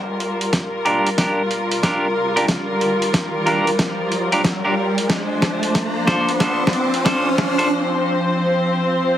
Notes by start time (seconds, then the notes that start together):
Already playing: G3 F4 A#4, riser
0.20 closed hi-hat
0.41 closed hi-hat
0.53 kick, snare, closed hi-hat
0.85 D4 F4 G4 A#4, closed hi-hat
1.07 closed hi-hat
1.18 D4 F4 G4 A#4, kick, snare, closed hi-hat
1.51 closed hi-hat
1.72 closed hi-hat
1.83 D4 F4 G4 A#4, kick, snare, closed hi-hat
2.36 D4 F4 G4 A#4, closed hi-hat
2.48 kick, snare, closed hi-hat
2.81 closed hi-hat
3.02 closed hi-hat
3.14 kick, snare, closed hi-hat
3.46 D4 F4 G4 A#4, closed hi-hat
3.67 closed hi-hat
3.79 kick, snare, closed hi-hat
4.12 closed hi-hat
4.32 D4 F4 G4 A#4, closed hi-hat
4.44 kick, snare, closed hi-hat
4.65 D4 F4 G4 A#4
4.98 closed hi-hat
5.09 F3 D4 C5, kick, snare, closed hi-hat
5.42 snare, closed hi-hat
5.63 closed hi-hat
5.75 kick, snare, closed hi-hat
6.07 D4 F4 A4 C5, snare, closed hi-hat
6.29 closed hi-hat
6.40 D4 F4 A4 C5, kick, snare, closed hi-hat
6.67 snare
6.73 closed hi-hat
6.94 closed hi-hat
7.05 D4 F4 A4 C5, kick, snare, closed hi-hat
7.38 snare
7.58 D4 F4 A4 C5, closed hi-hat
7.71 C4
9.01 reverse cymbal